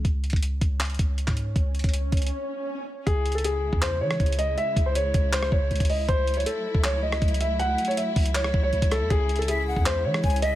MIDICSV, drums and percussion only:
0, 0, Header, 1, 2, 480
1, 0, Start_track
1, 0, Key_signature, 4, "minor"
1, 0, Tempo, 377358
1, 61, Time_signature, 4, 2, 24, 8
1, 13422, End_track
2, 0, Start_track
2, 0, Title_t, "Drums"
2, 61, Note_on_c, 9, 36, 105
2, 61, Note_on_c, 9, 42, 59
2, 188, Note_off_c, 9, 36, 0
2, 188, Note_off_c, 9, 42, 0
2, 301, Note_on_c, 9, 42, 40
2, 381, Note_off_c, 9, 42, 0
2, 381, Note_on_c, 9, 42, 54
2, 421, Note_on_c, 9, 36, 98
2, 461, Note_off_c, 9, 42, 0
2, 461, Note_on_c, 9, 42, 70
2, 541, Note_off_c, 9, 42, 0
2, 541, Note_on_c, 9, 42, 94
2, 548, Note_off_c, 9, 36, 0
2, 668, Note_off_c, 9, 42, 0
2, 781, Note_on_c, 9, 36, 106
2, 781, Note_on_c, 9, 42, 76
2, 908, Note_off_c, 9, 36, 0
2, 908, Note_off_c, 9, 42, 0
2, 1020, Note_on_c, 9, 39, 117
2, 1021, Note_on_c, 9, 42, 66
2, 1080, Note_off_c, 9, 42, 0
2, 1080, Note_on_c, 9, 42, 56
2, 1140, Note_off_c, 9, 42, 0
2, 1140, Note_on_c, 9, 42, 46
2, 1147, Note_off_c, 9, 39, 0
2, 1201, Note_off_c, 9, 42, 0
2, 1201, Note_on_c, 9, 42, 39
2, 1261, Note_off_c, 9, 42, 0
2, 1261, Note_on_c, 9, 36, 98
2, 1261, Note_on_c, 9, 42, 84
2, 1388, Note_off_c, 9, 36, 0
2, 1389, Note_off_c, 9, 42, 0
2, 1500, Note_on_c, 9, 42, 72
2, 1620, Note_on_c, 9, 36, 82
2, 1622, Note_on_c, 9, 39, 65
2, 1627, Note_off_c, 9, 42, 0
2, 1739, Note_on_c, 9, 42, 78
2, 1748, Note_off_c, 9, 36, 0
2, 1749, Note_off_c, 9, 39, 0
2, 1866, Note_off_c, 9, 42, 0
2, 1981, Note_on_c, 9, 36, 111
2, 1981, Note_on_c, 9, 42, 58
2, 2108, Note_off_c, 9, 36, 0
2, 2108, Note_off_c, 9, 42, 0
2, 2221, Note_on_c, 9, 42, 39
2, 2281, Note_off_c, 9, 42, 0
2, 2281, Note_on_c, 9, 42, 49
2, 2340, Note_off_c, 9, 42, 0
2, 2340, Note_on_c, 9, 42, 63
2, 2341, Note_on_c, 9, 36, 93
2, 2401, Note_off_c, 9, 42, 0
2, 2401, Note_on_c, 9, 42, 68
2, 2462, Note_off_c, 9, 42, 0
2, 2462, Note_on_c, 9, 42, 100
2, 2468, Note_off_c, 9, 36, 0
2, 2589, Note_off_c, 9, 42, 0
2, 2701, Note_on_c, 9, 36, 105
2, 2701, Note_on_c, 9, 42, 67
2, 2761, Note_off_c, 9, 42, 0
2, 2761, Note_on_c, 9, 42, 64
2, 2821, Note_off_c, 9, 42, 0
2, 2821, Note_on_c, 9, 42, 66
2, 2829, Note_off_c, 9, 36, 0
2, 2881, Note_off_c, 9, 42, 0
2, 2881, Note_on_c, 9, 42, 67
2, 3008, Note_off_c, 9, 42, 0
2, 3901, Note_on_c, 9, 36, 114
2, 3901, Note_on_c, 9, 42, 61
2, 4028, Note_off_c, 9, 36, 0
2, 4028, Note_off_c, 9, 42, 0
2, 4141, Note_on_c, 9, 42, 57
2, 4221, Note_off_c, 9, 42, 0
2, 4221, Note_on_c, 9, 42, 58
2, 4301, Note_off_c, 9, 42, 0
2, 4301, Note_on_c, 9, 42, 61
2, 4381, Note_off_c, 9, 42, 0
2, 4381, Note_on_c, 9, 42, 102
2, 4509, Note_off_c, 9, 42, 0
2, 4741, Note_on_c, 9, 36, 96
2, 4860, Note_on_c, 9, 39, 120
2, 4862, Note_on_c, 9, 42, 73
2, 4868, Note_off_c, 9, 36, 0
2, 4987, Note_off_c, 9, 39, 0
2, 4989, Note_off_c, 9, 42, 0
2, 5222, Note_on_c, 9, 37, 96
2, 5341, Note_on_c, 9, 36, 99
2, 5341, Note_on_c, 9, 42, 44
2, 5349, Note_off_c, 9, 37, 0
2, 5421, Note_off_c, 9, 42, 0
2, 5421, Note_on_c, 9, 42, 60
2, 5468, Note_off_c, 9, 36, 0
2, 5501, Note_off_c, 9, 42, 0
2, 5501, Note_on_c, 9, 42, 77
2, 5580, Note_off_c, 9, 42, 0
2, 5580, Note_on_c, 9, 42, 81
2, 5707, Note_off_c, 9, 42, 0
2, 5821, Note_on_c, 9, 42, 62
2, 5948, Note_off_c, 9, 42, 0
2, 6060, Note_on_c, 9, 36, 98
2, 6063, Note_on_c, 9, 42, 68
2, 6187, Note_off_c, 9, 36, 0
2, 6190, Note_off_c, 9, 42, 0
2, 6301, Note_on_c, 9, 42, 97
2, 6429, Note_off_c, 9, 42, 0
2, 6541, Note_on_c, 9, 36, 104
2, 6541, Note_on_c, 9, 42, 80
2, 6668, Note_off_c, 9, 42, 0
2, 6669, Note_off_c, 9, 36, 0
2, 6780, Note_on_c, 9, 39, 114
2, 6782, Note_on_c, 9, 42, 72
2, 6901, Note_on_c, 9, 37, 88
2, 6907, Note_off_c, 9, 39, 0
2, 6909, Note_off_c, 9, 42, 0
2, 7021, Note_on_c, 9, 36, 98
2, 7028, Note_off_c, 9, 37, 0
2, 7149, Note_off_c, 9, 36, 0
2, 7261, Note_on_c, 9, 42, 45
2, 7321, Note_off_c, 9, 42, 0
2, 7321, Note_on_c, 9, 42, 58
2, 7381, Note_off_c, 9, 42, 0
2, 7381, Note_on_c, 9, 36, 82
2, 7381, Note_on_c, 9, 42, 65
2, 7440, Note_off_c, 9, 42, 0
2, 7440, Note_on_c, 9, 42, 76
2, 7499, Note_on_c, 9, 46, 59
2, 7508, Note_off_c, 9, 36, 0
2, 7568, Note_off_c, 9, 42, 0
2, 7627, Note_off_c, 9, 46, 0
2, 7741, Note_on_c, 9, 36, 109
2, 7741, Note_on_c, 9, 42, 59
2, 7868, Note_off_c, 9, 36, 0
2, 7868, Note_off_c, 9, 42, 0
2, 7981, Note_on_c, 9, 42, 56
2, 8061, Note_off_c, 9, 42, 0
2, 8061, Note_on_c, 9, 42, 55
2, 8141, Note_off_c, 9, 42, 0
2, 8141, Note_on_c, 9, 42, 57
2, 8221, Note_off_c, 9, 42, 0
2, 8221, Note_on_c, 9, 42, 103
2, 8349, Note_off_c, 9, 42, 0
2, 8580, Note_on_c, 9, 36, 97
2, 8700, Note_on_c, 9, 39, 116
2, 8702, Note_on_c, 9, 42, 71
2, 8707, Note_off_c, 9, 36, 0
2, 8827, Note_off_c, 9, 39, 0
2, 8829, Note_off_c, 9, 42, 0
2, 9062, Note_on_c, 9, 37, 94
2, 9181, Note_on_c, 9, 36, 100
2, 9181, Note_on_c, 9, 42, 44
2, 9189, Note_off_c, 9, 37, 0
2, 9261, Note_off_c, 9, 42, 0
2, 9261, Note_on_c, 9, 42, 61
2, 9308, Note_off_c, 9, 36, 0
2, 9341, Note_off_c, 9, 42, 0
2, 9341, Note_on_c, 9, 42, 74
2, 9420, Note_off_c, 9, 42, 0
2, 9420, Note_on_c, 9, 42, 82
2, 9547, Note_off_c, 9, 42, 0
2, 9661, Note_on_c, 9, 42, 62
2, 9789, Note_off_c, 9, 42, 0
2, 9901, Note_on_c, 9, 42, 68
2, 9981, Note_off_c, 9, 42, 0
2, 9981, Note_on_c, 9, 42, 54
2, 10061, Note_off_c, 9, 42, 0
2, 10061, Note_on_c, 9, 42, 41
2, 10142, Note_off_c, 9, 42, 0
2, 10142, Note_on_c, 9, 42, 100
2, 10269, Note_off_c, 9, 42, 0
2, 10381, Note_on_c, 9, 36, 107
2, 10381, Note_on_c, 9, 42, 51
2, 10381, Note_on_c, 9, 46, 62
2, 10501, Note_off_c, 9, 42, 0
2, 10501, Note_on_c, 9, 42, 85
2, 10508, Note_off_c, 9, 46, 0
2, 10509, Note_off_c, 9, 36, 0
2, 10620, Note_on_c, 9, 39, 114
2, 10622, Note_off_c, 9, 42, 0
2, 10622, Note_on_c, 9, 42, 70
2, 10741, Note_on_c, 9, 37, 89
2, 10747, Note_off_c, 9, 39, 0
2, 10749, Note_off_c, 9, 42, 0
2, 10861, Note_on_c, 9, 36, 100
2, 10868, Note_off_c, 9, 37, 0
2, 10989, Note_off_c, 9, 36, 0
2, 11101, Note_on_c, 9, 42, 47
2, 11221, Note_off_c, 9, 42, 0
2, 11221, Note_on_c, 9, 36, 87
2, 11221, Note_on_c, 9, 42, 76
2, 11339, Note_off_c, 9, 42, 0
2, 11339, Note_on_c, 9, 42, 80
2, 11341, Note_on_c, 9, 37, 76
2, 11348, Note_off_c, 9, 36, 0
2, 11466, Note_off_c, 9, 42, 0
2, 11468, Note_off_c, 9, 37, 0
2, 11581, Note_on_c, 9, 36, 111
2, 11581, Note_on_c, 9, 42, 61
2, 11708, Note_off_c, 9, 36, 0
2, 11708, Note_off_c, 9, 42, 0
2, 11821, Note_on_c, 9, 42, 57
2, 11901, Note_off_c, 9, 42, 0
2, 11901, Note_on_c, 9, 42, 57
2, 11981, Note_off_c, 9, 42, 0
2, 11981, Note_on_c, 9, 42, 59
2, 12061, Note_off_c, 9, 42, 0
2, 12061, Note_on_c, 9, 42, 100
2, 12189, Note_off_c, 9, 42, 0
2, 12420, Note_on_c, 9, 36, 100
2, 12540, Note_on_c, 9, 39, 118
2, 12542, Note_on_c, 9, 42, 69
2, 12547, Note_off_c, 9, 36, 0
2, 12667, Note_off_c, 9, 39, 0
2, 12669, Note_off_c, 9, 42, 0
2, 12902, Note_on_c, 9, 37, 96
2, 13021, Note_on_c, 9, 36, 96
2, 13021, Note_on_c, 9, 42, 45
2, 13029, Note_off_c, 9, 37, 0
2, 13101, Note_off_c, 9, 42, 0
2, 13101, Note_on_c, 9, 42, 60
2, 13148, Note_off_c, 9, 36, 0
2, 13180, Note_off_c, 9, 42, 0
2, 13180, Note_on_c, 9, 42, 77
2, 13259, Note_off_c, 9, 42, 0
2, 13259, Note_on_c, 9, 42, 81
2, 13386, Note_off_c, 9, 42, 0
2, 13422, End_track
0, 0, End_of_file